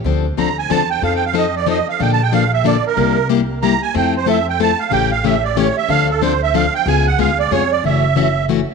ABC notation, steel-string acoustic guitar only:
X:1
M:3/4
L:1/8
Q:"Swing" 1/4=185
K:Dm
V:1 name="Steel-string acoustic guitar"
[D,F,CDA] z [D,F,CDA] z [D,F,CDA] z | [F,C_EA] z [F,CEA] z [F,CEA] z | [D,F,B,DA] z [D,F,B,DA] z [D,F,B,DA] z | [C,G,B,EG] z [C,G,B,EG] z [C,G,B,EG] z |
[F,A,CEA] z [F,A,CEA] z [F,A,CEA] z | [^C,E,A,^CG] z [C,E,A,CG] z [C,E,A,CG] z | [D,F,CDA] z [D,F,CDA] z [D,F,CDA] z | [^C,^G,=B,^E^G] z [C,G,B,EG] z [C,G,B,EG] z |
[K:F#m] [C,E,A,CF] z [C,E,A,CF] z [C,E,A,CF] z |]